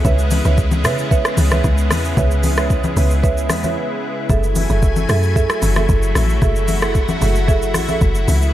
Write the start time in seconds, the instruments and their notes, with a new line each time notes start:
Already playing: analog synth pad C#3 G#3 B3 E4
0.05 log drum bass C#2, marimba B4 C#5 E5, kick, low conga, shaker
0.19 shaker
0.31 open hi-hat, high conga, shaker
0.45 log drum bass C#2, marimba B4 C#5 E5, shaker
0.58 kick, shaker
0.71 high conga, shaker
0.84 log drum bass C#3, marimba B4 C#5 E5, cross-stick, open hi-hat, low conga, shaker
0.98 shaker
1.11 marimba B4 C#5 E5, kick, shaker
1.25 cross-stick, shaker
1.37 log drum bass C#2, open hi-hat, high conga, shaker
1.51 marimba B4 C#5 E5, cross-stick, high conga, shaker
1.64 log drum bass C#2, kick, shaker
1.78 shaker
1.91 log drum bass E2, cross-stick, open hi-hat, high conga, shaker
2.05 shaker
2.17 log drum bass C#2, marimba B4 C#5 E5, kick, low conga, shaker
2.31 shaker
2.43 open hi-hat, high conga, shaker
2.57 marimba B4 C#5 E5, cross-stick, shaker
2.70 kick, shaker
2.84 high conga, shaker
2.97 log drum bass C#2, marimba B4 C#5 E5, open hi-hat, low conga, shaker
3.11 shaker
3.23 marimba B4 C#5 E5, kick, shaker
3.37 shaker
3.50 log drum bass E2, cross-stick, open hi-hat, high conga, shaker
3.63 marimba B4 C#5 E5, high conga, shaker
4.29 log drum bass F#1, analog synth pad F#3 A3 G#5, marimba G#4 A4 E5, kick, low conga, shaker
4.43 shaker
4.56 open hi-hat, high conga, shaker
4.69 log drum bass F#1, marimba G#4 A4 E5, shaker
4.82 kick, shaker
4.96 high conga, shaker
5.09 log drum bass F#2, marimba G#4 A4 E5, cross-stick, open hi-hat, low conga, shaker
5.23 shaker
5.36 marimba G#4 A4 E5, kick, shaker
5.50 cross-stick, shaker
5.62 log drum bass F#1, open hi-hat, high conga, shaker
5.76 marimba G#4 A4 E5, cross-stick, high conga, shaker
5.89 log drum bass F#1, kick, shaker
6.03 shaker
6.15 log drum bass A1, cross-stick, open hi-hat, high conga, shaker
6.29 shaker
6.42 log drum bass F#1, analog synth pad F#4, marimba G#4 A4 E5, kick, low conga, shaker
6.56 shaker
6.68 open hi-hat, high conga, shaker
6.82 marimba G#4 A4 E5, cross-stick, shaker
6.95 kick, shaker
7.08 high conga, shaker
7.21 log drum bass F#1, marimba G#4 A4 E5, open hi-hat, low conga, shaker
7.35 shaker
7.48 marimba G#4 A4 E5, kick, shaker
7.62 shaker
7.74 log drum bass A1, cross-stick, open hi-hat, high conga, shaker
7.88 marimba G#4 A4 E5, high conga, shaker
8.01 log drum bass F#1, kick, shaker
8.15 shaker
8.28 log drum bass C#2, analog synth pad C#3 G#3 B3, open hi-hat, high conga, shaker
8.42 shaker